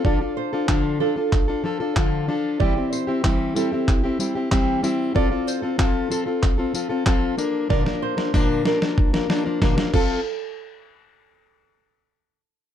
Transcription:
<<
  \new Staff \with { instrumentName = "Nylon-string guitar" } { \time 4/4 \key d \minor \tempo 4 = 94 d''8 c''8. r16 a'16 r2 r16 | d''8 c''8. r16 a'16 r2 r16 | d''8 c''8. r16 a'16 r2 r16 | d''8 c''8. r16 bes'16 r4. r16 a'8 |
r1 | }
  \new Staff \with { instrumentName = "Steel-string acoustic guitar" } { \time 4/4 \key d \minor <d f d' f' a'>16 <d' f' a'>8 <d' f' a'>16 <d f d' f' a'>8 <f d' f' a'>16 <d' f' a'>8 <d' f' a'>16 <f d' f' a'>16 <d' f' a'>16 <d f d' f' a'>8 <f d' f' a'>8 | <e g c' e' g'>16 <c' e' g'>8 <c' e' g'>16 <e g c' e' g'>8 <g c' e' g'>16 <c' e' g'>8 <c' e' g'>16 <g c' e' g'>16 <c' e' g'>16 <e g c' e' g'>8 <g c' e' g'>8 | <f c' f' a'>16 <c' f' a'>8 <c' f' a'>16 <f c' f' a'>8 <f c' f' a'>16 <c' f' a'>8 <c' f' a'>16 <f c' f' a'>16 <c' f' a'>16 <f c' f' a'>8 <f bes d' bes'>8 | <bes, d f bes d' bes'>16 <f bes d' bes'>8 <f bes d' bes'>16 <bes, d f bes d' bes'>8 <f bes d' bes'>16 <f bes d' bes'>8 <f bes d' bes'>16 <f bes d' bes'>16 <f bes d' bes'>16 <bes, d f bes d' bes'>16 <f bes d' bes'>16 <f c' f' a'>8 |
r1 | }
  \new DrumStaff \with { instrumentName = "Drums" } \drummode { \time 4/4 bd4 <hc bd>4 <hc bd>4 <hc bd>4 | bd8 tamb8 <hc bd>8 tamb8 <hc bd>8 tamb8 <hc bd>8 tamb8 | bd8 tamb8 <hc bd>8 tamb8 <hc bd>8 tamb8 <hc bd>8 tamb8 | <bd sn>16 sn8 sn16 <bd sn>8 sn16 sn16 bd16 sn16 sn8 <bd sn>16 sn16 <cymc bd>8 |
r4 r4 r4 r4 | }
>>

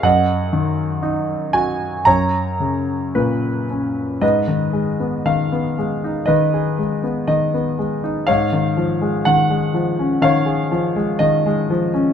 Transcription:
<<
  \new Staff \with { instrumentName = "Grand piano" } { \time 4/4 \key fis \mixolydian \tempo 4 = 60 << { fis''4 r8 gis''8 ais''4 b'4 | \key gis \dorian dis''4 eis''4 dis''4 dis''4 | eis''4 fis''4 eis''4 dis''4 | } \\ { dis''2 cis''2 | b'2 b'2 | cis''2 cis''2 | } >> }
  \new Staff \with { instrumentName = "Grand piano" } { \clef bass \time 4/4 \key fis \mixolydian fis,8 dis8 dis'8 fis'8 fis,8 cis8 ais,8 cis'8 | \key gis \dorian gis,16 dis16 gis16 b16 dis16 b16 gis16 dis'16 dis16 gis'16 gis16 b16 dis16 b16 gis16 dis'16 | gis,16 dis16 eis16 gis16 dis16 gis16 eis16 cis'16 dis16 gis'16 eis16 gis16 dis16 gis16 eis16 cis'16 | }
>>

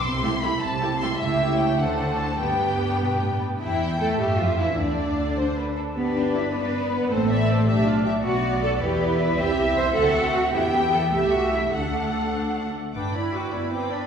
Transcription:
<<
  \new Staff \with { instrumentName = "Violin section" } { \time 6/8 \key g \major \tempo 4. = 103 c'''4 b''8 a''4 c'''8 | e''4 g''8 fis''4 a''8 | g''2~ g''8 r8 | \key f \lydian e'4 a'8 g'8 f'8 e'8 |
d'2~ d'8 r8 | d''4. d''4. | c''8 e''8 d''8 d''4. | \key g \major d''2. |
e''4. e''4. | e''4. e''4. | fis''2~ fis''8 r8 | d'''8 b''8 d'''8 b''8 d'''8 b''8 | }
  \new Staff \with { instrumentName = "Violin section" } { \time 6/8 \key g \major << { r8 e''8 e''8 r8 e''8 e''8 | e''8. cis''8. c''4. | b'2~ b'8 r8 | \key f \lydian g''4. e''4. |
d''4. c''8 b'8 a'8 | b'2. | c''8 d''8 c''8 e''8 d''8 e''8 | \key g \major d''4. b'4. |
e''4. fis''4. | g''4. e''4. | fis''2~ fis''16 r8. | <b' g''>8 <d'' b''>8 <b' g''>8 <d'' b''>8 <b' g''>8 <d'' b''>8 | } \\ { r8 g'8 g'8 r8 g'8 g'8 | g'4. a'4. | g'2~ g'8 r8 | r2. |
r2. | r2. | r2. | r2. |
r2. | r2. | r2. | r2. | } >> }
  \new Staff \with { instrumentName = "Cello section" } { \time 6/8 \key g \major c4. c4. | cis4. d4. | g,4. b,8 a,8 g,8 | \key f \lydian e'4 a'8 g'8 f'8 e'8 |
d'2~ d'8 r8 | b8 d'8 e'8 d'4 b8 | a2~ a8 r8 | \key g \major fis'4 a'8 g'4 e'8 |
g'4 c''8 a'4 fis'8 | e'8 g'8 a'8 g'8 fis'8 e'8 | d'2~ d'8 r8 | r4. b4. | }
  \new Staff \with { instrumentName = "Viola section" } { \time 6/8 \key g \major << { r8 e'8 e'8 r8 e'8 e'8 | e'4. d'4. | d'2~ d'8 r8 | \key f \lydian e4 a8 g8 f8 e8 |
d2~ d8 r8 | g'4. b'4. | a'4. g'8 f'8 g'8 | \key g \major fis'4. e'4. |
e'4. fis'4. | g'2. | a'2~ a'8 r8 | d'8 e'8 fis'8 e'8 c'8 d'8 | } \\ { r8 a8 a8 r8 a8 a8 | a4. a4. | b2~ b8 r8 | r2. |
r2. | d'4. b4. | c'4. d'4. | b4. b4. |
c'4. c'4. | b4. a4. | a2~ a8 r8 | r2. | } >> }
  \new Staff \with { instrumentName = "Double bass section" } { \clef bass \time 6/8 \key g \major c,4. c,4. | cis,4. d,4. | g,,2~ g,,8 r8 | \key f \lydian e,4 a,8 g,8 f,8 e,8 |
d,2~ d,8 r8 | g,,2. | a,,4. b,,4. | \key g \major b,,4. e,4. |
c,4. d,4. | e,4. c,4. | d,2~ d,8 r8 | g,,4. g,,4. | }
>>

